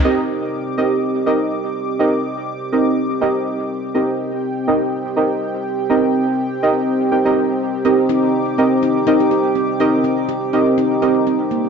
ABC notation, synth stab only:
X:1
M:4/4
L:1/16
Q:"Swing 16ths" 1/4=123
K:Cm
V:1 name="Synth stab"
[CEGBe]6 [CEGBe]4 [CEGBe]6 | [CEGBe]6 [CEGBe]4 [CEGBe]6 | [CEGBe]6 [CEGBe]4 [CEGBe]6 | [CEGBe]6 [CEGBe]4 [CEGBg] [CEGBe]4- [CEGBe] |
[CEGBe]6 [CEGBe]4 [CEGBe]6 | [CEGBe]6 [CEGBe]4 [CEGBe]6 |]